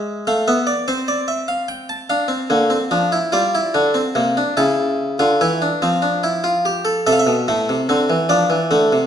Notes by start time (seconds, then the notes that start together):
Already playing: G#3 E5
0.27 A3 F5
0.48 B3 E5
0.67 D5
0.88 C4 C5
1.08 D5
1.28 E5
1.48 F5
1.68 G5
1.89 A5
2.10 D4 F5
2.28 C4
2.50 D3 A#3
2.70 C4
2.91 F3 D4
3.12 E4
3.32 G3 F4 D5
3.55 E4
3.74 D3 D4
3.94 C4
4.15 C3 A#3
4.37 D4
4.57 C#3 E4 A5
5.19 D3 F4
5.41 E3 E4
5.62 D4
5.82 F3 C4
6.02 D4
6.24 E4
6.44 F4
6.65 G4
6.85 A4
7.07 C3 A4 E5
7.12 F5
7.19 E5
7.27 B2
7.48 A2 A3
7.69 C3
7.89 D3 C4
8.10 E3
8.29 F3 D4 D5
8.50 E3
8.71 D3 A3
8.92 C3